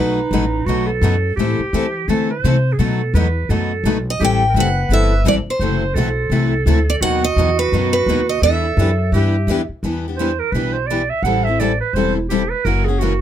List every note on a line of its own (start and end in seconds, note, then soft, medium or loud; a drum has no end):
0.00 0.30 B1 medium
0.00 0.18 B2 medium
0.00 0.18 F#3 medium
0.00 0.19 A3 medium
0.00 0.19 D#4 medium
0.00 0.67 D#4 medium
0.00 0.19 F#4 medium
0.00 0.19 B4 medium
0.00 0.87 B4 medium
0.31 0.66 A1 medium
0.31 0.44 B2 medium
0.31 0.44 F#3 medium
0.31 0.44 A3 medium
0.31 0.44 D#4 medium
0.31 0.44 F#4 medium
0.31 0.44 B4 medium
0.66 1.01 B1 medium
0.66 0.89 B2 medium
0.66 0.89 F#3 medium
0.66 0.89 A3 medium
0.66 0.89 D#4 medium
0.66 0.88 F#4 medium
0.66 0.89 F#4 medium
0.66 0.89 B4 medium
0.87 1.35 A4 medium
1.01 1.36 F#2 medium
1.01 1.14 B2 medium
1.01 1.14 F#3 medium
1.01 1.14 A3 medium
1.01 1.15 D#4 medium
1.01 1.15 F#4 medium
1.01 1.15 B4 medium
1.36 1.58 A2 medium
1.36 1.60 E3 medium
1.36 1.60 A3 medium
1.36 1.60 C4 medium
1.36 1.60 E4 medium
1.36 2.10 G4 loud
1.36 1.60 A4 medium
1.59 muted upright bass stroke soft
1.73 2.07 E3 medium
1.73 1.85 E3 medium
1.73 1.85 A3 medium
1.73 1.85 C4 medium
1.73 1.85 E4 medium
1.73 1.85 A4 medium
2.08 2.43 D3 medium
2.08 2.30 E3 medium
2.08 2.30 A3 medium
2.08 2.30 C4 medium
2.08 2.30 E4 medium
2.08 2.30 A4 medium
2.31 2.74 C5 medium
2.44 2.78 C3 medium
2.44 2.56 E3 medium
2.44 2.56 A3 medium
2.44 2.56 C4 medium
2.44 2.56 E4 medium
2.44 2.56 A4 medium
2.73 2.80 G#4 medium
2.79 3.13 B2 medium
2.79 3.00 B2 medium
2.79 3.00 F#3 medium
2.79 3.01 A3 medium
2.79 3.01 D#4 medium
2.79 3.01 F#4 medium
2.79 3.14 A4 medium
2.79 3.01 B4 medium
3.14 3.48 E2 medium
3.14 3.26 B2 medium
3.14 3.26 F#3 medium
3.14 3.27 A3 medium
3.14 3.27 D#4 medium
3.14 3.27 F#4 medium
3.14 3.51 B4 medium
3.14 3.27 B4 medium
3.49 3.83 F#2 medium
3.49 3.71 B2 medium
3.49 3.71 F#3 medium
3.49 3.71 A3 medium
3.49 3.71 D#4 medium
3.49 3.71 F#4 medium
3.49 4.07 A4 medium
3.49 3.71 B4 medium
3.84 4.19 B1 medium
3.84 3.96 B2 medium
3.84 3.96 F#3 medium
3.84 3.97 A3 medium
3.84 3.97 D#4 medium
3.84 3.97 F#4 medium
3.84 3.97 B4 medium
4.10 4.22 D#5 medium
4.20 4.54 A1 medium
4.20 4.41 E3 medium
4.20 4.42 G3 medium
4.20 4.42 C4 medium
4.20 4.42 E4 medium
4.20 4.48 G4 medium
4.20 4.42 A4 medium
4.24 4.55 G5 medium
4.49 4.57 A#4 medium
4.54 4.88 F#1 medium
4.54 4.67 E3 medium
4.54 4.67 G3 medium
4.54 4.68 C4 medium
4.54 4.68 E4 medium
4.54 4.68 A4 medium
4.54 5.36 B4 medium
4.60 4.91 F#5 medium
4.89 5.24 G1 medium
4.89 5.12 E3 medium
4.89 5.12 G3 medium
4.89 5.12 C4 medium
4.89 5.12 E4 medium
4.89 5.12 A4 medium
4.93 5.25 E5 medium
5.25 5.45 A1 medium
5.25 5.37 E3 medium
5.25 5.38 G3 medium
5.25 5.37 C4 medium
5.25 5.38 E4 medium
5.25 5.38 A4 loud
5.25 5.34 D5 medium
5.46 6.51 C5 medium
5.46 muted upright bass stroke soft
5.59 5.95 F#1 medium
5.59 5.82 C3 medium
5.59 5.82 E3 medium
5.59 5.83 F#3 medium
5.59 5.82 A3 medium
5.59 5.83 C4 medium
5.59 5.83 E4 medium
5.59 5.83 F#4 medium
5.59 5.83 A4 medium
5.59 5.96 C5 loud
5.94 6.29 B1 medium
5.94 6.08 C3 medium
5.94 6.08 E3 medium
5.94 6.08 F#3 medium
5.94 6.08 A3 medium
5.94 6.08 C4 medium
5.94 6.08 E4 medium
5.94 6.08 F#4 medium
5.94 7.02 A4 medium
5.94 6.08 A4 loud
6.30 6.65 C2 medium
6.30 6.53 C3 medium
6.30 6.53 E3 medium
6.30 6.52 F#3 medium
6.30 6.53 A3 medium
6.30 6.53 C4 medium
6.30 6.53 E4 medium
6.30 6.53 F#4 medium
6.30 6.53 A4 medium
6.66 7.01 D2 medium
6.66 6.78 C3 medium
6.66 6.78 E3 medium
6.66 6.78 F#3 medium
6.66 6.78 A3 medium
6.66 6.78 C4 medium
6.66 6.79 E4 loud
6.66 6.78 F#4 loud
6.66 6.79 A4 medium
6.90 6.95 D5 medium
7.01 7.36 D#2 medium
7.01 7.24 B2 medium
7.01 7.24 D#3 medium
7.01 7.24 F#3 medium
7.01 7.24 B3 medium
7.01 8.44 F#4 loud
7.01 7.24 F#4 medium
7.01 7.24 F#5 loud
7.05 7.24 D#4 medium
7.05 7.24 B4 medium
7.24 7.57 D#5 loud
7.36 7.71 E2 medium
7.36 7.49 B2 medium
7.36 7.49 D#3 medium
7.36 7.49 F#3 medium
7.36 7.49 B3 medium
7.36 7.50 D#4 medium
7.36 7.49 F#4 medium
7.36 7.50 B4 loud
7.59 7.92 B4 medium
7.72 8.06 F#2 medium
7.72 7.94 B2 medium
7.72 7.94 D#3 medium
7.72 7.94 F#3 medium
7.72 7.94 B3 medium
7.72 7.94 D#4 medium
7.72 7.95 F#4 medium
7.72 7.95 B4 medium
7.93 8.26 B4 medium
8.06 8.41 D#2 medium
8.06 8.19 B2 medium
8.06 8.20 D#3 medium
8.06 8.19 F#3 medium
8.06 8.20 B3 medium
8.06 8.20 D#4 loud
8.06 8.20 F#4 loud
8.06 8.20 B4 medium
8.29 8.43 D#5 medium
8.42 8.76 E2 medium
8.42 8.65 E3 medium
8.42 8.65 G3 medium
8.42 8.65 B3 medium
8.42 8.65 D4 medium
8.42 8.65 E4 medium
8.42 8.65 G4 medium
8.42 9.12 A4 medium
8.42 9.66 E5 medium
8.46 8.66 B4 medium
8.77 9.12 F#2 loud
8.77 8.90 E3 medium
8.77 8.90 G3 medium
8.77 8.90 B3 medium
8.77 8.90 D4 medium
8.77 8.90 E4 medium
8.77 8.90 G4 medium
8.77 8.90 B4 medium
9.12 9.46 G2 medium
9.12 9.34 E3 medium
9.12 9.35 G3 medium
9.12 9.35 B3 medium
9.12 9.35 D4 medium
9.12 9.35 E4 medium
9.12 9.66 G4 medium
9.12 9.36 G4 medium
9.12 9.35 B4 medium
9.47 9.68 E2 medium
9.47 9.59 E3 medium
9.47 9.59 G3 medium
9.47 9.60 B3 medium
9.47 9.60 D4 medium
9.47 9.60 E4 medium
9.47 9.60 B4 medium
9.51 9.61 G4 loud
9.69 muted upright bass stroke soft
9.83 10.39 E2 medium
9.83 10.05 E3 medium
9.83 10.05 G3 medium
9.83 10.05 B3 medium
9.83 10.05 D4 medium
9.83 10.05 E4 medium
9.83 10.06 G4 medium
9.83 10.05 B4 medium
10.08 10.19 B3 soft
10.08 10.20 D4 soft
10.08 10.20 G4 medium
10.17 10.30 E3 medium
10.17 10.30 G3 medium
10.17 10.31 B3 medium
10.17 10.31 D4 medium
10.17 10.31 E4 medium
10.17 10.31 B4 medium
10.17 10.41 C5 medium
10.21 10.31 G4 medium
10.39 10.53 A#4 medium
10.52 11.09 B1 medium
10.52 10.75 E3 medium
10.52 10.75 G3 medium
10.52 10.76 B3 medium
10.52 10.76 D4 medium
10.52 10.75 B4 medium
10.56 10.76 E4 medium
10.56 10.76 G4 medium
10.56 10.76 B4 medium
10.73 10.88 C5 medium
10.87 11.01 E3 medium
10.87 11.01 G3 medium
10.87 11.01 D4 medium
10.87 11.01 E4 medium
10.87 11.01 B4 medium
10.87 11.11 D5 medium
10.91 11.01 B3 medium
10.91 11.02 G4 medium
11.10 11.25 E5 medium
11.22 11.80 A1 medium
11.22 11.46 E3 medium
11.22 11.46 G3 medium
11.22 11.46 C4 medium
11.22 11.46 E4 medium
11.22 11.46 A4 medium
11.22 11.46 F#5 loud
11.44 11.60 E4 soft
11.44 11.60 A4 medium
11.44 11.61 E5 medium
11.49 11.60 C4 soft
11.60 11.71 E3 medium
11.60 11.71 G3 medium
11.60 11.71 C4 medium
11.60 11.71 E4 medium
11.60 11.71 A4 medium
11.60 11.80 D5 medium
11.81 11.96 B4 medium
11.93 12.50 E1 medium
11.93 12.16 E3 medium
11.93 12.16 G3 medium
11.93 12.17 C4 medium
11.93 12.17 E4 medium
11.93 12.17 A4 medium
11.93 12.15 C5 medium
12.16 12.30 E4 soft
12.28 12.41 E3 medium
12.28 12.42 G3 medium
12.28 12.42 C4 medium
12.28 12.42 E4 medium
12.28 12.52 G4 medium
12.28 12.42 A4 medium
12.50 12.66 B4 medium
12.65 13.21 F#1 medium
12.65 12.86 C#3 medium
12.65 12.87 E3 medium
12.65 12.86 F#3 medium
12.65 12.87 A#3 medium
12.65 12.87 C#4 medium
12.65 12.87 E4 medium
12.65 12.87 F#4 medium
12.65 12.87 A#4 medium
12.85 13.00 F#4 medium
12.85 13.01 G#4 medium
12.89 13.01 A#3 soft
12.89 13.01 C#4 medium
12.99 13.12 C#3 medium
12.99 13.12 E3 medium
12.99 13.12 F#3 medium
12.99 13.13 A#3 medium
12.99 13.12 C#4 medium
12.99 13.12 E4 medium
12.99 13.21 F#4 medium
12.99 13.13 F#4 medium
12.99 13.12 A#4 medium